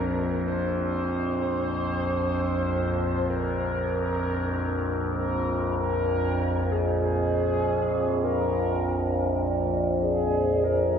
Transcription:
Already playing: A#1 F2 F4 A#4
0.48 C5
0.82 C5
3.30 A#4
5.18 A#4
5.78 A#4
6.72 G#4
7.00 G#4
8.24 A#4
10.01 G#4
10.64 A#4

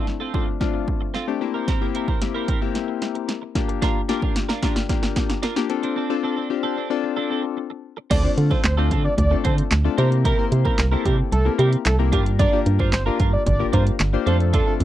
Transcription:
Already playing: A3 C4 D4 E4
0.07 muted clean electric guitar stroke, snare
0.20 C4 F4 A4
0.34 A3 C4 D4 F4 A4, kick
0.47 muted clean electric guitar stroke
0.60 A3 C4 D4 F4, muted clean electric guitar stroke, kick, snare
0.74 muted clean electric guitar stroke
0.88 kick
1.01 muted clean electric guitar stroke
1.14 C4 F4 A4, snare
1.27 A3 C4 D4 G4, muted clean electric guitar stroke
1.41 A#3 C4 E4 G4, muted clean electric guitar stroke
1.54 C4 E4 A#4
1.68 C4 E4 A#4, kick, snare, closed hi-hat
1.81 A#3 C4 E4 G4
1.94 C4 E4 A#4, closed hi-hat
2.08 C4 E4 A#4, kick
2.21 A#3 C4 E4 G4, muted clean electric guitar stroke, snare, closed hi-hat
2.35 C4 E4 A#4
2.48 C4 E4 A#4, kick, closed hi-hat
2.61 A#3 C4 E4 G4, muted clean electric guitar stroke
2.75 muted clean electric guitar stroke, snare, closed hi-hat
2.88 muted clean electric guitar stroke
3.02 snare, closed hi-hat
3.15 muted clean electric guitar stroke, closed hi-hat
3.28 muted clean electric guitar stroke, snare, closed hi-hat
3.42 muted clean electric guitar stroke
3.55 A#3 D4 F4 G4, kick, snare, closed hi-hat
3.69 muted clean electric guitar stroke, closed hi-hat
3.82 D4 F4 A#4, kick, snare, closed hi-hat
4.09 A#3 D4 F4 G4 A#4, snare, closed hi-hat
4.22 D4 F4 A#4, kick
4.36 muted clean electric guitar stroke, snare, closed hi-hat
4.49 D4 F4 A#4, snare
4.62 A#3 D4 F4 G4 A#4, kick, snare, closed hi-hat
4.76 muted clean electric guitar stroke, snare
4.89 A#3 D4 F4 G4, muted clean electric guitar stroke, kick, snare, closed hi-hat
5.03 muted clean electric guitar stroke, snare
5.16 kick, snare, closed hi-hat
5.29 muted clean electric guitar stroke, snare, closed hi-hat
5.43 D4 F4 A#4, snare, closed hi-hat
5.56 A#3 D4 F4 G4, muted clean electric guitar stroke, snare
5.69 C4 D4 F4 A4, muted clean electric guitar stroke, closed hi-hat
5.83 C4 D4 A4, closed hi-hat
5.96 C4 D4 A4
6.10 C4 D4 F4 A4
6.23 C4 D4 A4
6.36 C4 D4 A4
6.50 C4 D4 F4 G4, muted clean electric guitar stroke
6.63 C4 D4 A4
6.76 C4 D4 A4
6.90 C4 D4 F4 A4, muted clean electric guitar stroke
7.03 muted clean electric guitar stroke
7.17 C4 D4 A4
7.30 C4 D4 A4
7.44 muted clean electric guitar stroke
7.57 muted clean electric guitar stroke
7.70 muted clean electric guitar stroke
7.97 muted clean electric guitar stroke
8.10 D2 C4 F4 A4 D5, kick, closed hi-hat, crash
8.24 A3 C4 D4 F4 A4, muted clean electric guitar stroke
8.37 D3, muted clean electric guitar stroke, closed hi-hat
8.51 C4 F4 A4 C5, kick
8.64 D2 C5, snare, clap, closed hi-hat
8.77 A3 C4 D4 F4 A4
8.91 D3 C4 F4 A4, kick, closed hi-hat
9.04 D5, muted clean electric guitar stroke
9.18 D2 D5, muted clean electric guitar stroke, kick, closed hi-hat
9.31 A3 C4 D4 F4 A4, muted clean electric guitar stroke
9.44 D3 C4 F4 A4 C5, kick, closed hi-hat
9.58 muted clean electric guitar stroke, closed hi-hat
9.71 D2, snare, clap, closed hi-hat
9.85 A3 C4 D4 F4 A4, muted clean electric guitar stroke
9.98 C3 A#3 C4 E4 G4 A#4 C5, closed hi-hat
10.11 muted clean electric guitar stroke, closed hi-hat
10.25 C4 E4 A#4, kick, closed hi-hat
10.38 A#3 C4 E4 G4 C5, muted clean electric guitar stroke
10.52 C3, muted clean electric guitar stroke, closed hi-hat
10.65 C4 E4 A#4, kick
10.78 C2, muted clean electric guitar stroke, snare, clap, closed hi-hat
10.92 A#3 C4 E4 G4 A4 A#4
11.05 C3 C4 E4 G4 A#4, kick, closed hi-hat
11.18 muted clean electric guitar stroke
11.32 C2 A4, muted clean electric guitar stroke, closed hi-hat
11.45 A#3 C4 E4 G4 A#4, muted clean electric guitar stroke
11.59 C3 C4 E4 G4 A#4, closed hi-hat
11.72 muted clean electric guitar stroke, closed hi-hat
11.86 C2 A4, muted clean electric guitar stroke, snare, clap, closed hi-hat
11.99 A#3 C4 E4 G4 A#4, muted clean electric guitar stroke
12.12 G2 A#3 D4 F4 G4 A#4, kick, closed hi-hat
12.26 muted clean electric guitar stroke, closed hi-hat
12.39 D4 F4 A#4 D5, kick, closed hi-hat
12.53 A#3 D4 F4 G4 A#4, muted clean electric guitar stroke
12.66 G2, muted clean electric guitar stroke, closed hi-hat
12.79 D4 F4 A#4 C5, kick
12.93 G1 C5, muted clean electric guitar stroke, snare, clap, closed hi-hat
13.06 A#3 D4 F4 G4 A#4
13.19 G2 D4 F4 A#4, kick, closed hi-hat
13.33 D5, muted clean electric guitar stroke
13.46 G1 D5, muted clean electric guitar stroke, kick, closed hi-hat
13.60 A#3 D4 F4 G4 A#4, muted clean electric guitar stroke
13.73 G2 D4 F4 A#4 C5, kick, closed hi-hat
13.86 muted clean electric guitar stroke, closed hi-hat
14.00 G1, snare, clap, closed hi-hat
14.13 A#3 D4 F4 G4 C5, muted clean electric guitar stroke
14.26 F2 A3 C4 D4 F4 A4 C5, closed hi-hat
14.40 muted clean electric guitar stroke, closed hi-hat
14.53 D4 F4 A4, kick, closed hi-hat
14.67 A3 C4 D4 F4 A4, muted clean electric guitar stroke
14.80 F2, muted clean electric guitar stroke, closed hi-hat

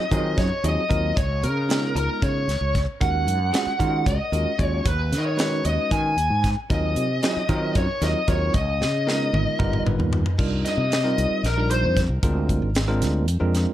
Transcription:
Already playing: D#5
0.11 D#3 F#3 C4 D#4 F4 G#4, kick, closed hi-hat
0.38 F#2 C#5, kick, snare, closed hi-hat
0.64 D#2 F#3 C4 D#4 F4 G#4 D#5, closed hi-hat
0.89 D#2 F#3 C4 D#4 F4 A#4, kick, closed hi-hat
1.17 C#2 C#5, kick, closed hi-hat
1.43 C#3 A#4, closed hi-hat
1.69 G#3 B3 D#4 F4 A#4, snare, closed hi-hat
1.95 C#2 A#4, closed hi-hat
2.22 C#3 C#5, kick, closed hi-hat
2.48 C#2, snare, closed hi-hat
2.61 C#2
2.75 kick, snare, closed hi-hat
3.00 D#2 G#3 C#4 D#4 F#4 A#4 F#5, kick, closed hi-hat
3.27 F#2, closed hi-hat
3.53 G#3 C#4 F4 F#4 G#4, snare, closed hi-hat
3.66 muted fretless electric bass stroke
3.79 D#3 G#3 C#4 F4 F#4 A#4, kick, closed hi-hat
4.06 C#2 D#5, kick, closed hi-hat
4.32 D#2 G#3 C#4 F4 F#4 A#4, closed hi-hat
4.58 D#2 G#3 C#4 F4 F#4 C#5, kick, closed hi-hat
4.66 C#5
4.85 D#2 B4, kick, closed hi-hat
5.12 D#3, snare, closed hi-hat
5.18 D#5
5.26 C#5
5.37 G#3 C#4 D#4 F#4 B4, snare, closed hi-hat
5.65 D#2 D#5, closed hi-hat
5.91 D#3 G#5, kick, closed hi-hat
6.17 D#2, closed hi-hat
6.30 G#2
6.44 kick, snare, closed hi-hat
6.70 D#2 F#3 C4 D#4 F4 A#4 D#5, kick, closed hi-hat
6.96 C3, closed hi-hat
7.23 F#3 C4 D#4 F4 G#4, snare, closed hi-hat
7.36 muted fretless electric bass stroke
7.49 D#3 F#3 C4 D#4 F4 A#4, kick, closed hi-hat
7.75 F#2 C#5, kick, closed hi-hat
8.01 D#2 F#3 C4 D#4 F4 A#4 D#5, snare, closed hi-hat
8.28 D#2 F#3 C4 D#4 F4 A#4 C#5, kick, closed hi-hat
8.54 C#2 D#5, kick, closed hi-hat
8.81 C#3, snare
9.07 G#3 B3 D#4 F4 A#4, snare
9.33 G#1, high tom
9.59 G1 G3 B3 D#4 F4 A#4, kick, mid tom
9.73 mid tom
9.86 G1 B4, mid tom
9.99 D#2, floor tom
10.13 floor tom
10.26 floor tom
10.38 C2 G3 D4 D#4 F4 A#4, kick, crash
10.65 D#5, snare, closed hi-hat
10.77 C3
10.92 snare, closed hi-hat
11.04 G3 C4 D#4 F4 A#4
11.18 C2, closed hi-hat
11.43 A#1 A#4, snare, closed hi-hat
11.57 G3 D4 D#4 F4 A#4
11.71 C5, closed hi-hat
11.83 F2
11.97 kick, snare, closed hi-hat
12.09 C2
12.23 D2 G#3 C4 D4 F4 A#4, kick, closed hi-hat
12.49 kick, closed hi-hat
12.62 G#1
12.75 snare, closed hi-hat
12.88 G#3 C4 D4 F4 A#4
13.01 D2, snare, closed hi-hat
13.28 F2, closed hi-hat
13.40 F2 G#3 C4 D4 F4 A#4
13.55 snare, closed hi-hat

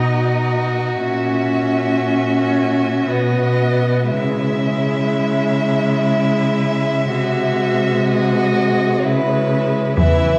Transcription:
Already playing: B2 D#4 F#4 D#5
1.02 A#2 C#4 E5
3.09 B2 B3 D#5
4.10 C#3 G#3 E4 E5
7.11 C3 F#4
8.08 D#5
9.03 C#3 E4 B4
9.97 E2 E3 E4 E5

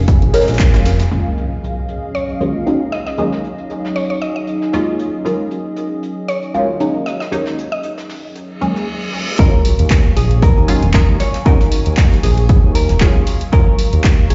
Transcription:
Already playing: F1 G#3 A#3 C#4 D#4 G#4 A#4 C#5 F5 G#5
0.08 kick, closed hi-hat
0.22 A#1, closed hi-hat
0.33 G#3 A#3 C#4 A#4, snare, closed hi-hat, open hi-hat
0.41 snare, closed hi-hat
0.48 A#1, snare, closed hi-hat
0.54 snare, closed hi-hat
0.59 kick, snare, clap, closed hi-hat
0.74 F1 G#3 A#3 C#4 F4, snare, closed hi-hat
0.85 snare, closed hi-hat, open hi-hat
0.99 snare, closed hi-hat
1.11 D#2 F#3 G#3 A#3 C#4 D#4 F4 G#4 D#5 F5, closed hi-hat, impact
1.17 F#3
1.38 closed hi-hat
1.45 C#5
1.64 closed hi-hat
1.88 closed hi-hat
2.15 C#5, closed hi-hat
2.29 closed hi-hat
2.40 D#2 F#3 G#3 A#3 C#4 F4, closed hi-hat
2.66 D#2 F#3 G#3 A#3 C#4 D#4, closed hi-hat
2.92 D#5, snare, closed hi-hat
3.06 D#5, snare
3.17 D#2 F#3 G#3 A#3 C#4 D#4, closed hi-hat
3.32 snare
3.44 closed hi-hat
3.58 closed hi-hat
3.70 closed hi-hat
3.85 snare
3.96 C#5, snare, open hi-hat
4.10 C#5
4.21 D#5, closed hi-hat
4.36 D#5
4.47 closed hi-hat
4.62 snare
4.73 D#2 F#3 G#3 A#3 C#4 F4, closed hi-hat
4.98 D#5, closed hi-hat
5.25 D#2 F#3 G#3 A#3 C#4 F4, closed hi-hat
5.51 closed hi-hat
5.76 closed hi-hat
6.03 closed hi-hat
6.28 C#5, closed hi-hat
6.43 closed hi-hat
6.54 D#2 F#3 G#3 A#3 C#4 F4, closed hi-hat
6.80 D#2 F#3 G#3 A#3 C#4 D#4, closed hi-hat
7.06 D#5, snare, closed hi-hat
7.20 D#5, snare
7.31 D#2 F#3 G#3 A#3 C#4 D#4, closed hi-hat
7.46 snare
7.58 closed hi-hat
7.72 D#5, closed hi-hat
7.83 closed hi-hat
7.98 snare
8.09 snare, open hi-hat
8.35 closed hi-hat, reverse cymbal
8.61 D#2 F#3 G#3 A#3 C#4 G#4, closed hi-hat
8.76 snare
9.38 D#2 F#3 G#3 C#4 F4 A#4 F5 G#5 C#6, kick, closed hi-hat, impact
9.65 closed hi-hat, open hi-hat
9.79 D#2, closed hi-hat
9.90 kick, snare, clap, closed hi-hat
10.17 A#1 G#4, closed hi-hat, open hi-hat
10.31 closed hi-hat
10.42 A#4, kick, closed hi-hat
10.57 D#2, closed hi-hat
10.68 F#3 G#3 C#4 F4, closed hi-hat, open hi-hat
10.83 D#1, closed hi-hat
10.94 F#3 G#3 C#4 D#4 A#4, kick, snare, clap, closed hi-hat
11.08 D#2
11.20 C#5, snare, closed hi-hat, open hi-hat
11.34 snare, closed hi-hat
11.45 D#2 F#3 G#3 C#4 D#4 A#4, kick, closed hi-hat
11.61 snare
11.71 closed hi-hat, open hi-hat
11.86 D#2, closed hi-hat
11.97 kick, snare, clap, closed hi-hat
12.12 snare
12.23 A#1 G#4, snare, open hi-hat
12.38 closed hi-hat
12.49 kick, closed hi-hat
12.63 D#2
12.75 A#4, closed hi-hat, open hi-hat
12.89 D#1, snare, closed hi-hat
13.01 F#3 G#3 C#4 F4 G#4, kick, snare, clap, closed hi-hat
13.15 D#2
13.26 closed hi-hat, open hi-hat
13.41 closed hi-hat
13.52 D#2 F#3 G#3 C#4 F4 A#4 A#5, kick, closed hi-hat
13.79 closed hi-hat, open hi-hat
13.93 D#2, closed hi-hat
14.04 kick, snare, clap, closed hi-hat
14.30 A#1 G#4, closed hi-hat, open hi-hat

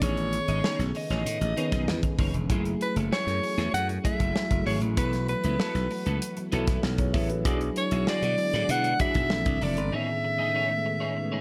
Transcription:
Already playing: A3
0.00 A1 C#3 D#3 B3 C#4 D#4 G#4 C#5, kick, closed hi-hat
0.17 muted clean electric guitar stroke, closed hi-hat
0.33 muted clean electric guitar stroke, closed hi-hat
0.48 G#1 D#4 G#4 D#5, closed hi-hat
0.64 D#4 G#4 C#5, snare
0.79 B1, muted clean electric guitar stroke, snare, closed hi-hat
0.95 D#5, muted clean electric guitar stroke, open hi-hat
1.10 A1 D#4 G#4 C#5, snare, closed hi-hat
1.25 A2, muted clean electric guitar stroke, closed hi-hat
1.41 A1, muted clean electric guitar stroke, closed hi-hat
1.56 D#3 B3 C#4 D#4 G#4 B4 C#5, closed hi-hat
1.72 B1 D#4 G#4 D#5, kick, snare, closed hi-hat
1.87 E2, muted clean electric guitar stroke, snare
2.03 muted clean electric guitar stroke, kick, closed hi-hat
2.19 F#1 D#4 G#4 C#5, kick, open hi-hat
2.34 E1, muted clean electric guitar stroke, closed hi-hat
2.49 F#1 E3 F#3 A3 C#4 E4 F#4 G#4, kick, closed hi-hat
2.65 muted clean electric guitar stroke, closed hi-hat
2.81 B4, muted clean electric guitar stroke, closed hi-hat
2.96 F#1 A3 E4 A4, closed hi-hat
3.11 A3 E4 G#4 C#5, snare
3.27 F#2, muted clean electric guitar stroke, snare, closed hi-hat
3.42 muted clean electric guitar stroke, open hi-hat
3.58 E2 A3 E4 G#4, snare, closed hi-hat
3.74 F#2 F#5, muted clean electric guitar stroke, closed hi-hat
3.89 muted clean electric guitar stroke, closed hi-hat
4.04 F#3 A3 E4 G#4 E5, kick, closed hi-hat
4.20 F#1 A3 E4 A4, kick, closed hi-hat
4.35 muted clean electric guitar stroke, snare
4.50 F#1, muted clean electric guitar stroke, kick, closed hi-hat
4.66 G#1 A3 E4 G#4 C#5, open hi-hat
4.81 A1, muted clean electric guitar stroke, closed hi-hat
4.97 B1 F#3 B3 E4 G#4 A4 B4, kick, closed hi-hat
5.05 A4
5.13 muted clean electric guitar stroke, snare, closed hi-hat
5.28 B4, muted clean electric guitar stroke, closed hi-hat
5.44 C#2 B3 E4 B4, closed hi-hat
5.59 B3 E4 A4, snare
5.75 B1, muted clean electric guitar stroke, snare, closed hi-hat
5.90 muted clean electric guitar stroke, open hi-hat
6.06 C#2 B3 E4 A4, closed hi-hat
6.21 muted clean electric guitar stroke, closed hi-hat
6.37 muted clean electric guitar stroke, closed hi-hat
6.52 B1 F#3 B3 E4 A4, closed hi-hat
6.67 B3 E4 B4, kick, snare, closed hi-hat
6.83 B1, muted clean electric guitar stroke, snare
6.98 G#4 C#5, muted clean electric guitar stroke, kick, closed hi-hat
7.13 A1 B3 E4 A4 B4 E5, kick, open hi-hat
7.29 F#4 B4, muted clean electric guitar stroke, closed hi-hat
7.44 B1 D3 F#3 G#3 B3 D4 E4 F#4 G#4 D5, kick, closed hi-hat
7.61 muted clean electric guitar stroke, closed hi-hat
7.76 C#5, muted clean electric guitar stroke, closed hi-hat
7.91 B1 F#4 G#4 E5, closed hi-hat
8.07 F#4 G#4 D5, snare
8.22 B2, muted clean electric guitar stroke, snare, closed hi-hat
8.38 muted clean electric guitar stroke, open hi-hat
8.53 A2 F#4 G#4 D5, snare, closed hi-hat
8.69 B2 F#5, muted clean electric guitar stroke, closed hi-hat
8.84 muted clean electric guitar stroke, closed hi-hat
8.99 F#3 D4 E4 F#4 G#4 D5 E5, kick, closed hi-hat
9.14 B1 F#4 G#4 E5, kick, closed hi-hat
9.30 A#1 E3 A3 C4 D4, snare
9.46 C2, muted clean electric guitar stroke, kick, closed hi-hat
9.61 F1 E4 A4 D5, open hi-hat
9.77 G1, muted clean electric guitar stroke, closed hi-hat
9.92 A2 C#3 D#3 G#3 B3 C#4 D#4 G#4 C#5 E5
10.09 muted clean electric guitar stroke
10.24 muted clean electric guitar stroke
10.39 D#4 G#4 D#5
10.55 D#4 G#4 C#5
10.70 muted clean electric guitar stroke
10.85 muted clean electric guitar stroke
11.00 D#4 G#4 C#5
11.16 muted clean electric guitar stroke
11.32 D#4 G#4 C#5

